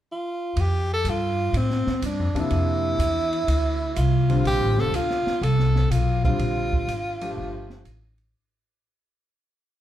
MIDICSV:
0, 0, Header, 1, 6, 480
1, 0, Start_track
1, 0, Key_signature, -1, "major"
1, 0, Tempo, 485437
1, 554, Time_signature, 4, 2, 24, 8
1, 9697, End_track
2, 0, Start_track
2, 0, Title_t, "Tenor saxophone"
2, 0, Program_c, 0, 66
2, 116, Note_on_c, 0, 65, 78
2, 597, Note_on_c, 0, 67, 96
2, 611, Note_off_c, 0, 65, 0
2, 903, Note_off_c, 0, 67, 0
2, 919, Note_on_c, 0, 69, 91
2, 1082, Note_on_c, 0, 65, 83
2, 1096, Note_off_c, 0, 69, 0
2, 1554, Note_on_c, 0, 60, 73
2, 1569, Note_off_c, 0, 65, 0
2, 2015, Note_off_c, 0, 60, 0
2, 2033, Note_on_c, 0, 62, 68
2, 2371, Note_on_c, 0, 64, 91
2, 2386, Note_off_c, 0, 62, 0
2, 3888, Note_off_c, 0, 64, 0
2, 3888, Note_on_c, 0, 64, 60
2, 3920, Note_on_c, 0, 65, 77
2, 3934, Note_off_c, 0, 64, 0
2, 4399, Note_off_c, 0, 65, 0
2, 4421, Note_on_c, 0, 67, 103
2, 4747, Note_on_c, 0, 69, 91
2, 4762, Note_off_c, 0, 67, 0
2, 4898, Note_on_c, 0, 65, 90
2, 4913, Note_off_c, 0, 69, 0
2, 5372, Note_on_c, 0, 69, 75
2, 5386, Note_off_c, 0, 65, 0
2, 5845, Note_on_c, 0, 65, 68
2, 5860, Note_off_c, 0, 69, 0
2, 6170, Note_off_c, 0, 65, 0
2, 6178, Note_on_c, 0, 65, 81
2, 8051, Note_off_c, 0, 65, 0
2, 9697, End_track
3, 0, Start_track
3, 0, Title_t, "Grand piano"
3, 0, Program_c, 1, 0
3, 2324, Note_on_c, 1, 53, 51
3, 2324, Note_on_c, 1, 58, 48
3, 2326, Note_on_c, 1, 48, 58
3, 2331, Note_on_c, 1, 62, 62
3, 2926, Note_off_c, 1, 53, 0
3, 2926, Note_off_c, 1, 58, 0
3, 2927, Note_off_c, 1, 48, 0
3, 2930, Note_off_c, 1, 62, 0
3, 4247, Note_on_c, 1, 50, 67
3, 4248, Note_on_c, 1, 55, 59
3, 4252, Note_on_c, 1, 60, 64
3, 4257, Note_on_c, 1, 65, 73
3, 4849, Note_off_c, 1, 50, 0
3, 4849, Note_off_c, 1, 55, 0
3, 4851, Note_off_c, 1, 60, 0
3, 4854, Note_off_c, 1, 65, 0
3, 6170, Note_on_c, 1, 50, 59
3, 6174, Note_on_c, 1, 55, 49
3, 6175, Note_on_c, 1, 60, 49
3, 6179, Note_on_c, 1, 65, 59
3, 6770, Note_off_c, 1, 50, 0
3, 6772, Note_off_c, 1, 55, 0
3, 6773, Note_off_c, 1, 60, 0
3, 6775, Note_off_c, 1, 65, 0
3, 7132, Note_on_c, 1, 57, 56
3, 7135, Note_on_c, 1, 53, 67
3, 7138, Note_on_c, 1, 62, 60
3, 7144, Note_on_c, 1, 67, 72
3, 7730, Note_off_c, 1, 57, 0
3, 7732, Note_off_c, 1, 53, 0
3, 7733, Note_off_c, 1, 62, 0
3, 7736, Note_off_c, 1, 67, 0
3, 9697, End_track
4, 0, Start_track
4, 0, Title_t, "Upright bass"
4, 0, Program_c, 2, 32
4, 556, Note_on_c, 2, 41, 79
4, 1021, Note_off_c, 2, 41, 0
4, 1033, Note_on_c, 2, 43, 85
4, 1500, Note_off_c, 2, 43, 0
4, 1514, Note_on_c, 2, 45, 77
4, 1820, Note_off_c, 2, 45, 0
4, 1997, Note_on_c, 2, 43, 79
4, 2168, Note_off_c, 2, 43, 0
4, 2168, Note_on_c, 2, 41, 55
4, 2309, Note_off_c, 2, 41, 0
4, 2315, Note_on_c, 2, 40, 58
4, 2464, Note_off_c, 2, 40, 0
4, 2480, Note_on_c, 2, 41, 70
4, 2944, Note_off_c, 2, 41, 0
4, 2953, Note_on_c, 2, 40, 84
4, 3421, Note_off_c, 2, 40, 0
4, 3435, Note_on_c, 2, 38, 80
4, 3902, Note_off_c, 2, 38, 0
4, 3920, Note_on_c, 2, 36, 81
4, 4385, Note_off_c, 2, 36, 0
4, 4397, Note_on_c, 2, 34, 68
4, 4554, Note_off_c, 2, 34, 0
4, 4554, Note_on_c, 2, 33, 52
4, 4700, Note_off_c, 2, 33, 0
4, 4706, Note_on_c, 2, 29, 54
4, 4859, Note_off_c, 2, 29, 0
4, 4865, Note_on_c, 2, 38, 72
4, 5177, Note_off_c, 2, 38, 0
4, 5354, Note_on_c, 2, 36, 84
4, 5822, Note_off_c, 2, 36, 0
4, 5838, Note_on_c, 2, 35, 82
4, 6304, Note_off_c, 2, 35, 0
4, 6313, Note_on_c, 2, 34, 72
4, 6782, Note_off_c, 2, 34, 0
4, 6796, Note_on_c, 2, 32, 79
4, 7263, Note_off_c, 2, 32, 0
4, 7285, Note_on_c, 2, 31, 76
4, 7747, Note_off_c, 2, 31, 0
4, 7762, Note_on_c, 2, 33, 83
4, 8225, Note_off_c, 2, 33, 0
4, 9697, End_track
5, 0, Start_track
5, 0, Title_t, "Muted upright bass strokes"
5, 1846, Note_on_c, 9, 29, 37
5, 1945, Note_off_c, 9, 29, 0
5, 5201, Note_on_c, 9, 29, 31
5, 5300, Note_off_c, 9, 29, 0
5, 9697, End_track
6, 0, Start_track
6, 0, Title_t, "Drums"
6, 559, Note_on_c, 9, 51, 54
6, 658, Note_off_c, 9, 51, 0
6, 1037, Note_on_c, 9, 44, 50
6, 1037, Note_on_c, 9, 51, 54
6, 1136, Note_off_c, 9, 44, 0
6, 1136, Note_off_c, 9, 51, 0
6, 1523, Note_on_c, 9, 51, 58
6, 1622, Note_off_c, 9, 51, 0
6, 1685, Note_on_c, 9, 38, 25
6, 1784, Note_off_c, 9, 38, 0
6, 1846, Note_on_c, 9, 38, 36
6, 1945, Note_off_c, 9, 38, 0
6, 2000, Note_on_c, 9, 44, 55
6, 2000, Note_on_c, 9, 51, 59
6, 2099, Note_off_c, 9, 44, 0
6, 2099, Note_off_c, 9, 51, 0
6, 2332, Note_on_c, 9, 51, 44
6, 2431, Note_off_c, 9, 51, 0
6, 2476, Note_on_c, 9, 51, 45
6, 2575, Note_off_c, 9, 51, 0
6, 2962, Note_on_c, 9, 44, 50
6, 2962, Note_on_c, 9, 51, 65
6, 3061, Note_off_c, 9, 44, 0
6, 3061, Note_off_c, 9, 51, 0
6, 3290, Note_on_c, 9, 51, 37
6, 3388, Note_off_c, 9, 51, 0
6, 3442, Note_on_c, 9, 51, 68
6, 3541, Note_off_c, 9, 51, 0
6, 3919, Note_on_c, 9, 44, 53
6, 3919, Note_on_c, 9, 51, 56
6, 4017, Note_off_c, 9, 44, 0
6, 4017, Note_off_c, 9, 51, 0
6, 4247, Note_on_c, 9, 51, 42
6, 4346, Note_off_c, 9, 51, 0
6, 4402, Note_on_c, 9, 51, 49
6, 4501, Note_off_c, 9, 51, 0
6, 4731, Note_on_c, 9, 38, 32
6, 4830, Note_off_c, 9, 38, 0
6, 4882, Note_on_c, 9, 44, 46
6, 4882, Note_on_c, 9, 51, 61
6, 4981, Note_off_c, 9, 44, 0
6, 4981, Note_off_c, 9, 51, 0
6, 5046, Note_on_c, 9, 38, 26
6, 5145, Note_off_c, 9, 38, 0
6, 5208, Note_on_c, 9, 38, 38
6, 5307, Note_off_c, 9, 38, 0
6, 5372, Note_on_c, 9, 51, 55
6, 5470, Note_off_c, 9, 51, 0
6, 5531, Note_on_c, 9, 38, 26
6, 5630, Note_off_c, 9, 38, 0
6, 5691, Note_on_c, 9, 38, 36
6, 5790, Note_off_c, 9, 38, 0
6, 5848, Note_on_c, 9, 44, 57
6, 5848, Note_on_c, 9, 51, 62
6, 5947, Note_off_c, 9, 44, 0
6, 5947, Note_off_c, 9, 51, 0
6, 6173, Note_on_c, 9, 36, 41
6, 6272, Note_off_c, 9, 36, 0
6, 6322, Note_on_c, 9, 51, 45
6, 6421, Note_off_c, 9, 51, 0
6, 6653, Note_on_c, 9, 36, 50
6, 6752, Note_off_c, 9, 36, 0
6, 6808, Note_on_c, 9, 44, 54
6, 6808, Note_on_c, 9, 51, 59
6, 6907, Note_off_c, 9, 44, 0
6, 6907, Note_off_c, 9, 51, 0
6, 7133, Note_on_c, 9, 51, 59
6, 7232, Note_off_c, 9, 51, 0
6, 7613, Note_on_c, 9, 38, 38
6, 7712, Note_off_c, 9, 38, 0
6, 7764, Note_on_c, 9, 44, 48
6, 7764, Note_on_c, 9, 51, 54
6, 7863, Note_off_c, 9, 44, 0
6, 7863, Note_off_c, 9, 51, 0
6, 8087, Note_on_c, 9, 51, 41
6, 8186, Note_off_c, 9, 51, 0
6, 9697, End_track
0, 0, End_of_file